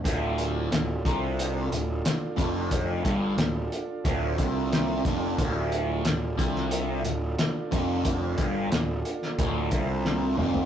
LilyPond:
<<
  \new Staff \with { instrumentName = "Transistor combo organ" } { \time 4/4 \key d \minor \tempo 4 = 90 <d' f' a'>1~ | <d' f' a'>1~ | <d' f' a'>1~ | <d' f' a'>1 | }
  \new Staff \with { instrumentName = "Distorted electric guitar" } { \clef bass \time 4/4 \key d \minor d,4 d,8 c4 d,8 r8 f,8~ | f,8 g,8 d,8 r8 d,8 c4 f,8 | d,4 d,8 c4 d,8 r8 f,8~ | f,8 g,8 d,8 r8 d,8 c4 f,8 | }
  \new Staff \with { instrumentName = "Picked electric bass" } { \clef bass \time 4/4 \key d \minor d,,4 d,,8 c,4 d,,8 r8 f,,8~ | f,,8 g,,8 d,,8 r8 d,,8 c,4 f,,8 | d,,4 d,,8 c,4 d,,8 r8 f,,8~ | f,,8 g,,8 d,,8 r8 d,,8 c,4 f,,8 | }
  \new DrumStaff \with { instrumentName = "Drums" } \drummode { \time 4/4 <hh bd>8 hh8 <hh sn>8 <hh bd>8 hh8 hh8 <hh sn>8 <hh bd>8 | <hh bd>8 <hh bd>8 <hh sn>8 hh8 <hh bd>8 <hh bd>8 <hh sn>8 <hh bd>8 | <hh bd>8 hh8 <hh sn>8 <hh bd>16 sn16 hh8 hh8 <hh sn>8 <hh bd>8 | <hh bd>8 <hh bd>8 <hh sn>8 hh16 sn16 <hh bd>8 <hh bd>8 sn8 toml16 tomfh16 | }
>>